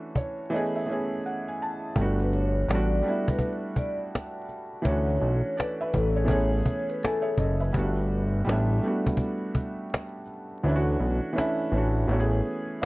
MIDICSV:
0, 0, Header, 1, 5, 480
1, 0, Start_track
1, 0, Tempo, 722892
1, 1302, Time_signature, 4, 2, 24, 8
1, 8535, End_track
2, 0, Start_track
2, 0, Title_t, "Vibraphone"
2, 0, Program_c, 0, 11
2, 1460, Note_on_c, 0, 71, 68
2, 1539, Note_off_c, 0, 71, 0
2, 1549, Note_on_c, 0, 73, 70
2, 1762, Note_off_c, 0, 73, 0
2, 1788, Note_on_c, 0, 74, 78
2, 2150, Note_off_c, 0, 74, 0
2, 2177, Note_on_c, 0, 71, 70
2, 2257, Note_off_c, 0, 71, 0
2, 2509, Note_on_c, 0, 74, 65
2, 2639, Note_off_c, 0, 74, 0
2, 3230, Note_on_c, 0, 73, 93
2, 3679, Note_off_c, 0, 73, 0
2, 3708, Note_on_c, 0, 71, 82
2, 3945, Note_off_c, 0, 71, 0
2, 3952, Note_on_c, 0, 69, 64
2, 4164, Note_off_c, 0, 69, 0
2, 4193, Note_on_c, 0, 73, 79
2, 4553, Note_off_c, 0, 73, 0
2, 4580, Note_on_c, 0, 71, 78
2, 4659, Note_off_c, 0, 71, 0
2, 4670, Note_on_c, 0, 69, 74
2, 4882, Note_off_c, 0, 69, 0
2, 8535, End_track
3, 0, Start_track
3, 0, Title_t, "Felt piano"
3, 0, Program_c, 1, 0
3, 0, Control_c, 1, 64, 127
3, 0, Note_on_c, 1, 52, 80
3, 0, Note_on_c, 1, 57, 77
3, 0, Note_on_c, 1, 61, 72
3, 0, Note_on_c, 1, 62, 71
3, 0, Note_on_c, 1, 66, 73
3, 113, Note_on_c, 1, 73, 65
3, 293, Note_off_c, 1, 52, 0
3, 297, Note_off_c, 1, 57, 0
3, 302, Note_off_c, 1, 61, 0
3, 307, Note_off_c, 1, 62, 0
3, 312, Note_off_c, 1, 66, 0
3, 331, Note_off_c, 1, 73, 0
3, 331, Note_on_c, 1, 52, 99
3, 341, Note_on_c, 1, 57, 78
3, 351, Control_c, 1, 64, 0
3, 351, Note_on_c, 1, 59, 76
3, 352, Note_on_c, 1, 75, 68
3, 361, Note_on_c, 1, 61, 79
3, 372, Note_on_c, 1, 68, 105
3, 485, Note_off_c, 1, 75, 0
3, 487, Control_c, 1, 64, 127
3, 504, Note_on_c, 1, 76, 66
3, 562, Note_off_c, 1, 52, 0
3, 570, Note_off_c, 1, 57, 0
3, 572, Note_on_c, 1, 52, 72
3, 575, Note_off_c, 1, 59, 0
3, 580, Note_off_c, 1, 61, 0
3, 581, Note_on_c, 1, 57, 64
3, 586, Note_off_c, 1, 68, 0
3, 593, Note_on_c, 1, 59, 63
3, 602, Note_on_c, 1, 61, 68
3, 612, Note_on_c, 1, 68, 87
3, 806, Note_off_c, 1, 76, 0
3, 835, Note_on_c, 1, 78, 68
3, 967, Note_off_c, 1, 78, 0
3, 984, Note_on_c, 1, 80, 58
3, 1063, Note_off_c, 1, 80, 0
3, 1076, Note_on_c, 1, 81, 69
3, 1262, Note_off_c, 1, 52, 0
3, 1267, Note_off_c, 1, 57, 0
3, 1272, Note_off_c, 1, 59, 0
3, 1277, Note_off_c, 1, 61, 0
3, 1282, Note_off_c, 1, 68, 0
3, 1293, Note_off_c, 1, 81, 0
3, 1298, Note_on_c, 1, 55, 71
3, 1308, Note_on_c, 1, 57, 83
3, 1310, Control_c, 1, 64, 0
3, 1317, Note_on_c, 1, 59, 67
3, 1329, Note_on_c, 1, 62, 64
3, 1337, Note_on_c, 1, 66, 85
3, 1441, Control_c, 1, 64, 127
3, 1757, Note_off_c, 1, 55, 0
3, 1762, Note_off_c, 1, 57, 0
3, 1766, Note_off_c, 1, 59, 0
3, 1772, Note_off_c, 1, 62, 0
3, 1776, Note_off_c, 1, 66, 0
3, 1785, Note_on_c, 1, 55, 82
3, 1796, Note_on_c, 1, 57, 76
3, 1805, Note_on_c, 1, 59, 71
3, 1815, Note_on_c, 1, 62, 74
3, 1825, Note_on_c, 1, 66, 93
3, 1999, Note_off_c, 1, 55, 0
3, 2008, Note_off_c, 1, 57, 0
3, 2009, Note_on_c, 1, 55, 77
3, 2018, Note_off_c, 1, 59, 0
3, 2018, Note_on_c, 1, 57, 63
3, 2027, Note_off_c, 1, 62, 0
3, 2028, Note_on_c, 1, 59, 72
3, 2032, Note_off_c, 1, 66, 0
3, 2039, Note_on_c, 1, 62, 73
3, 2048, Note_on_c, 1, 64, 86
3, 2929, Note_off_c, 1, 55, 0
3, 2933, Note_off_c, 1, 57, 0
3, 2938, Note_off_c, 1, 59, 0
3, 2944, Note_off_c, 1, 62, 0
3, 2948, Note_off_c, 1, 64, 0
3, 3199, Note_on_c, 1, 52, 82
3, 3209, Note_on_c, 1, 57, 72
3, 3219, Note_on_c, 1, 61, 81
3, 3230, Note_on_c, 1, 62, 66
3, 3232, Control_c, 1, 64, 0
3, 3241, Note_on_c, 1, 66, 85
3, 3331, Control_c, 1, 64, 127
3, 3667, Note_off_c, 1, 52, 0
3, 3672, Note_off_c, 1, 57, 0
3, 3677, Note_off_c, 1, 61, 0
3, 3683, Note_off_c, 1, 62, 0
3, 3688, Note_off_c, 1, 66, 0
3, 3699, Note_on_c, 1, 74, 71
3, 3703, Note_on_c, 1, 69, 56
3, 3841, Note_off_c, 1, 74, 0
3, 3843, Note_off_c, 1, 69, 0
3, 3855, Note_on_c, 1, 76, 78
3, 3861, Note_on_c, 1, 71, 60
3, 4081, Note_off_c, 1, 76, 0
3, 4084, Note_off_c, 1, 71, 0
3, 4090, Note_on_c, 1, 73, 65
3, 4093, Note_on_c, 1, 68, 56
3, 4145, Note_on_c, 1, 52, 82
3, 4156, Note_on_c, 1, 57, 81
3, 4165, Note_on_c, 1, 59, 80
3, 4176, Note_off_c, 1, 68, 0
3, 4176, Note_on_c, 1, 61, 83
3, 4186, Note_on_c, 1, 68, 99
3, 4190, Control_c, 1, 64, 0
3, 4318, Note_off_c, 1, 73, 0
3, 4322, Control_c, 1, 64, 127
3, 4664, Note_off_c, 1, 68, 0
3, 4675, Note_on_c, 1, 69, 61
3, 4675, Note_on_c, 1, 80, 69
3, 4679, Note_on_c, 1, 64, 52
3, 4794, Note_on_c, 1, 76, 65
3, 4795, Note_on_c, 1, 73, 66
3, 4799, Note_on_c, 1, 68, 64
3, 4807, Note_off_c, 1, 80, 0
3, 4810, Note_off_c, 1, 69, 0
3, 4812, Note_off_c, 1, 64, 0
3, 4889, Note_off_c, 1, 73, 0
3, 4892, Note_off_c, 1, 68, 0
3, 4900, Note_on_c, 1, 75, 67
3, 4905, Note_on_c, 1, 69, 56
3, 5039, Note_off_c, 1, 76, 0
3, 5042, Note_off_c, 1, 75, 0
3, 5044, Note_off_c, 1, 69, 0
3, 5049, Note_on_c, 1, 76, 64
3, 5053, Note_on_c, 1, 71, 49
3, 5077, Note_off_c, 1, 52, 0
3, 5082, Note_off_c, 1, 57, 0
3, 5087, Note_off_c, 1, 59, 0
3, 5092, Note_off_c, 1, 61, 0
3, 5130, Note_on_c, 1, 55, 80
3, 5140, Note_on_c, 1, 57, 75
3, 5150, Note_on_c, 1, 59, 70
3, 5151, Control_c, 1, 64, 0
3, 5159, Note_on_c, 1, 62, 75
3, 5169, Note_on_c, 1, 66, 88
3, 5253, Control_c, 1, 64, 127
3, 5278, Note_off_c, 1, 76, 0
3, 5280, Note_off_c, 1, 71, 0
3, 5593, Note_off_c, 1, 55, 0
3, 5598, Note_off_c, 1, 57, 0
3, 5603, Note_off_c, 1, 59, 0
3, 5607, Note_off_c, 1, 62, 0
3, 5608, Note_on_c, 1, 55, 91
3, 5613, Note_off_c, 1, 66, 0
3, 5618, Note_on_c, 1, 57, 86
3, 5628, Note_on_c, 1, 59, 80
3, 5638, Note_on_c, 1, 62, 81
3, 5648, Note_on_c, 1, 64, 92
3, 5842, Note_off_c, 1, 55, 0
3, 5848, Note_off_c, 1, 57, 0
3, 5852, Note_on_c, 1, 55, 72
3, 5853, Note_off_c, 1, 59, 0
3, 5859, Note_off_c, 1, 62, 0
3, 5863, Note_off_c, 1, 64, 0
3, 5863, Note_on_c, 1, 57, 74
3, 5873, Note_on_c, 1, 59, 73
3, 5883, Note_on_c, 1, 62, 70
3, 5893, Note_on_c, 1, 66, 76
3, 6770, Note_off_c, 1, 55, 0
3, 6776, Note_off_c, 1, 57, 0
3, 6781, Note_off_c, 1, 59, 0
3, 6786, Note_off_c, 1, 62, 0
3, 6791, Note_off_c, 1, 66, 0
3, 7060, Note_on_c, 1, 52, 77
3, 7069, Note_on_c, 1, 57, 71
3, 7072, Control_c, 1, 64, 0
3, 7079, Note_on_c, 1, 61, 70
3, 7090, Note_on_c, 1, 62, 76
3, 7099, Note_on_c, 1, 64, 69
3, 7134, Note_off_c, 1, 64, 0
3, 7142, Note_on_c, 1, 66, 92
3, 7171, Control_c, 1, 64, 127
3, 7512, Note_off_c, 1, 52, 0
3, 7522, Note_off_c, 1, 57, 0
3, 7522, Note_on_c, 1, 52, 86
3, 7527, Note_off_c, 1, 61, 0
3, 7533, Note_off_c, 1, 62, 0
3, 7533, Note_on_c, 1, 57, 81
3, 7542, Note_on_c, 1, 61, 76
3, 7552, Note_on_c, 1, 62, 81
3, 7559, Note_off_c, 1, 66, 0
3, 7561, Note_on_c, 1, 64, 105
3, 7760, Note_off_c, 1, 52, 0
3, 7766, Note_off_c, 1, 57, 0
3, 7770, Note_off_c, 1, 61, 0
3, 7776, Note_off_c, 1, 62, 0
3, 7779, Note_on_c, 1, 52, 76
3, 7780, Note_off_c, 1, 64, 0
3, 7788, Note_on_c, 1, 57, 71
3, 7797, Note_on_c, 1, 61, 76
3, 7809, Note_on_c, 1, 62, 74
3, 7819, Note_on_c, 1, 66, 83
3, 8006, Note_off_c, 1, 52, 0
3, 8016, Note_off_c, 1, 57, 0
3, 8016, Note_on_c, 1, 52, 81
3, 8026, Note_on_c, 1, 57, 76
3, 8030, Note_off_c, 1, 61, 0
3, 8030, Control_c, 1, 64, 0
3, 8036, Note_off_c, 1, 62, 0
3, 8036, Note_on_c, 1, 59, 77
3, 8041, Note_off_c, 1, 66, 0
3, 8046, Note_on_c, 1, 61, 78
3, 8056, Note_on_c, 1, 66, 78
3, 8092, Note_off_c, 1, 66, 0
3, 8099, Note_on_c, 1, 68, 95
3, 8157, Control_c, 1, 64, 127
3, 8511, Note_on_c, 1, 76, 55
3, 8515, Note_on_c, 1, 71, 54
3, 8535, Note_off_c, 1, 52, 0
3, 8535, Note_off_c, 1, 57, 0
3, 8535, Note_off_c, 1, 59, 0
3, 8535, Note_off_c, 1, 61, 0
3, 8535, Note_off_c, 1, 68, 0
3, 8535, Note_off_c, 1, 71, 0
3, 8535, Note_off_c, 1, 76, 0
3, 8535, End_track
4, 0, Start_track
4, 0, Title_t, "Analog synth bass"
4, 0, Program_c, 2, 38
4, 1301, Note_on_c, 2, 31, 86
4, 1755, Note_off_c, 2, 31, 0
4, 1781, Note_on_c, 2, 33, 89
4, 2004, Note_off_c, 2, 33, 0
4, 3221, Note_on_c, 2, 38, 95
4, 3444, Note_off_c, 2, 38, 0
4, 3462, Note_on_c, 2, 35, 87
4, 3599, Note_off_c, 2, 35, 0
4, 3944, Note_on_c, 2, 33, 85
4, 4166, Note_off_c, 2, 33, 0
4, 4170, Note_on_c, 2, 33, 106
4, 4398, Note_off_c, 2, 33, 0
4, 4898, Note_on_c, 2, 30, 86
4, 5122, Note_off_c, 2, 30, 0
4, 5142, Note_on_c, 2, 31, 90
4, 5596, Note_off_c, 2, 31, 0
4, 5623, Note_on_c, 2, 33, 92
4, 5845, Note_off_c, 2, 33, 0
4, 7062, Note_on_c, 2, 38, 94
4, 7285, Note_off_c, 2, 38, 0
4, 7302, Note_on_c, 2, 35, 90
4, 7439, Note_off_c, 2, 35, 0
4, 7782, Note_on_c, 2, 33, 86
4, 8005, Note_off_c, 2, 33, 0
4, 8021, Note_on_c, 2, 33, 117
4, 8244, Note_off_c, 2, 33, 0
4, 8535, End_track
5, 0, Start_track
5, 0, Title_t, "Cajon"
5, 103, Note_on_c, 9, 36, 81
5, 169, Note_off_c, 9, 36, 0
5, 256, Note_on_c, 9, 38, 18
5, 323, Note_off_c, 9, 38, 0
5, 1300, Note_on_c, 9, 36, 105
5, 1367, Note_off_c, 9, 36, 0
5, 1549, Note_on_c, 9, 38, 33
5, 1616, Note_off_c, 9, 38, 0
5, 1699, Note_on_c, 9, 38, 16
5, 1765, Note_off_c, 9, 38, 0
5, 1796, Note_on_c, 9, 38, 91
5, 1863, Note_off_c, 9, 38, 0
5, 2024, Note_on_c, 9, 38, 35
5, 2090, Note_off_c, 9, 38, 0
5, 2178, Note_on_c, 9, 36, 95
5, 2244, Note_off_c, 9, 36, 0
5, 2248, Note_on_c, 9, 36, 87
5, 2315, Note_off_c, 9, 36, 0
5, 2498, Note_on_c, 9, 36, 82
5, 2565, Note_off_c, 9, 36, 0
5, 2641, Note_on_c, 9, 38, 20
5, 2707, Note_off_c, 9, 38, 0
5, 2757, Note_on_c, 9, 38, 98
5, 2824, Note_off_c, 9, 38, 0
5, 2980, Note_on_c, 9, 38, 35
5, 3046, Note_off_c, 9, 38, 0
5, 3140, Note_on_c, 9, 38, 18
5, 3206, Note_off_c, 9, 38, 0
5, 3220, Note_on_c, 9, 36, 110
5, 3287, Note_off_c, 9, 36, 0
5, 3469, Note_on_c, 9, 38, 36
5, 3536, Note_off_c, 9, 38, 0
5, 3619, Note_on_c, 9, 38, 17
5, 3686, Note_off_c, 9, 38, 0
5, 3718, Note_on_c, 9, 38, 99
5, 3784, Note_off_c, 9, 38, 0
5, 3942, Note_on_c, 9, 36, 85
5, 4009, Note_off_c, 9, 36, 0
5, 4170, Note_on_c, 9, 36, 91
5, 4236, Note_off_c, 9, 36, 0
5, 4419, Note_on_c, 9, 36, 84
5, 4486, Note_off_c, 9, 36, 0
5, 4562, Note_on_c, 9, 38, 18
5, 4628, Note_off_c, 9, 38, 0
5, 4678, Note_on_c, 9, 38, 102
5, 4745, Note_off_c, 9, 38, 0
5, 4898, Note_on_c, 9, 36, 84
5, 4964, Note_off_c, 9, 36, 0
5, 5061, Note_on_c, 9, 38, 20
5, 5128, Note_off_c, 9, 38, 0
5, 5141, Note_on_c, 9, 36, 112
5, 5207, Note_off_c, 9, 36, 0
5, 5391, Note_on_c, 9, 38, 35
5, 5457, Note_off_c, 9, 38, 0
5, 5539, Note_on_c, 9, 38, 19
5, 5606, Note_off_c, 9, 38, 0
5, 5638, Note_on_c, 9, 38, 108
5, 5704, Note_off_c, 9, 38, 0
5, 5865, Note_on_c, 9, 38, 32
5, 5932, Note_off_c, 9, 38, 0
5, 6019, Note_on_c, 9, 36, 92
5, 6086, Note_off_c, 9, 36, 0
5, 6090, Note_on_c, 9, 36, 92
5, 6156, Note_off_c, 9, 36, 0
5, 6340, Note_on_c, 9, 36, 83
5, 6406, Note_off_c, 9, 36, 0
5, 6483, Note_on_c, 9, 38, 19
5, 6549, Note_off_c, 9, 38, 0
5, 6599, Note_on_c, 9, 38, 104
5, 6665, Note_off_c, 9, 38, 0
5, 6822, Note_on_c, 9, 38, 34
5, 6888, Note_off_c, 9, 38, 0
5, 6981, Note_on_c, 9, 38, 16
5, 7048, Note_off_c, 9, 38, 0
5, 7070, Note_on_c, 9, 38, 39
5, 7136, Note_off_c, 9, 38, 0
5, 7311, Note_on_c, 9, 38, 37
5, 7378, Note_off_c, 9, 38, 0
5, 7459, Note_on_c, 9, 38, 19
5, 7526, Note_off_c, 9, 38, 0
5, 7558, Note_on_c, 9, 38, 93
5, 7624, Note_off_c, 9, 38, 0
5, 7785, Note_on_c, 9, 38, 36
5, 7852, Note_off_c, 9, 38, 0
5, 7936, Note_on_c, 9, 38, 18
5, 8002, Note_off_c, 9, 38, 0
5, 8029, Note_on_c, 9, 38, 44
5, 8095, Note_off_c, 9, 38, 0
5, 8270, Note_on_c, 9, 38, 36
5, 8337, Note_off_c, 9, 38, 0
5, 8403, Note_on_c, 9, 38, 18
5, 8470, Note_off_c, 9, 38, 0
5, 8535, End_track
0, 0, End_of_file